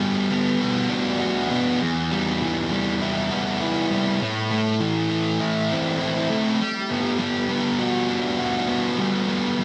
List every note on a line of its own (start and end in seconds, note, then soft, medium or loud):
0.00 1.50 G3 medium
0.00 0.29 B3 medium
0.00 0.29 F#4 medium
0.30 1.49 B3 medium
0.61 1.19 F#4 medium
0.89 1.79 D4 medium
1.20 1.80 F#4 medium
1.50 1.80 B3 medium
1.81 3.30 E2 medium
2.11 2.69 G3 medium
2.42 3.91 E3 medium
2.70 3.89 G3 medium
3.01 3.59 E4 medium
3.31 4.20 B3 medium
3.60 4.20 E4 medium
3.90 4.20 G3 medium
4.21 5.70 A2 medium
4.50 5.08 A3 medium
4.80 6.30 E3 medium
5.09 6.28 A3 medium
5.40 5.99 E4 medium
5.71 6.60 C4 medium
6.00 6.60 E4 medium
6.30 6.59 A3 medium
6.61 7.18 G3 medium
6.90 7.48 B3 medium
7.19 8.97 G3 medium
7.49 8.68 B3 medium
7.79 8.37 F#4 medium
8.09 9.58 D4 medium
8.39 9.64 F#4 medium
8.68 9.27 B3 medium
8.98 9.57 G3 medium
9.28 9.64 B3 medium
9.58 9.64 G3 medium